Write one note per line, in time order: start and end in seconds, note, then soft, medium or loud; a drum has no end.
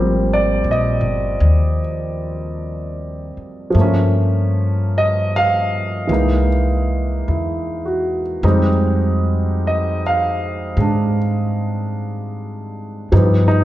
0.00 0.60 G#1 medium
0.00 3.69 F3 soft
0.00 3.75 G3 soft
0.00 3.75 A#3 soft
0.00 3.75 C4 soft
0.33 0.67 D5 medium
0.64 1.00 A#1 medium
0.71 1.80 D#5 medium
1.01 1.38 G1 medium
1.40 3.33 D#2 medium
3.37 muted upright bass stroke soft
3.70 6.07 F3 medium
3.70 6.08 A3 soft
3.75 6.05 G2 medium
3.75 6.09 A#3 soft
3.81 6.12 C#4 medium
4.98 5.33 D#5 medium
5.36 6.47 F5 medium
6.07 7.22 C2 medium
6.07 8.43 E3 soft
6.07 8.42 G#3 soft
6.07 8.45 A#3 soft
6.13 8.43 D#4 soft
7.28 8.41 E2 medium
7.28 8.22 E4 soft
7.86 8.69 F#4 soft
8.43 10.74 F2 medium
8.43 13.11 G3 soft
8.43 10.76 G#3 soft
8.43 13.12 C4 soft
8.43 13.12 D#4 medium
9.67 10.02 D#5 medium
10.07 11.17 F5 medium
10.77 13.07 G#2 medium
10.77 13.12 G#3 soft
10.77 13.13 D4 soft
13.12 13.64 G2 medium
13.12 13.64 F3 soft
13.12 13.64 G3 soft
13.12 13.64 B3 soft
13.12 13.46 D#4 medium
13.48 13.64 D#4 medium